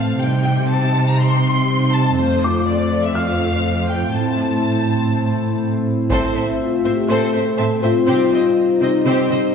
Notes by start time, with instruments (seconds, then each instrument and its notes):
Already playing: cello section A2, analog synth pad E3 A3 C4 C5, violin section F5, felt piano C6
0.20 cello section C3, analog synth pad G3 D#4, violin section G5
0.45 felt piano G5
0.71 violin section A5
1.08 violin section A#5
1.21 violin section C6
1.93 violin section A5
2.17 cello section F2, analog synth pad A3 F4, violin section C5
2.44 felt piano D6
2.68 violin section D5
3.04 violin section E5
3.15 violin section F5, felt piano F6
3.91 violin section G5
4.14 cello section A2, analog synth pad C4 E4 C5, violin section A5
6.09 cello section A2, analog synth pad A3 C4 C5 E5, viola section C4 C5, french horn section E4, violin section A4 C5, taiko
6.35 cello section A2, viola section C4 C5, violin section C5 E5
6.60 french horn section F4
6.84 cello section A2, viola section C4 C5, violin section C5 E5
6.95 french horn section G4
7.07 cello section A2, viola section C4 C5, french horn section A4, violin section A4 C5, felt piano C5 C6
7.33 cello section A2, viola section C4 C5, violin section C5 E5
7.57 cello section A2, viola section C4 C5, violin section E5 A5
7.82 cello section A2, viola section C4 C5, french horn section F4, violin section C5 E5
8.07 cello section C3, analog synth pad G3 D#4, viola section C4 C5, violin section G4 C5
8.32 cello section C3, viola section C4 C5, violin section C5 D#5
8.80 cello section C3, viola section C4 C5, french horn section D#4, violin section C5 D#5
9.05 cello section C3, viola section C4 C5, violin section G4 C5
9.30 cello section C3, viola section C4 C5, violin section C5 D#5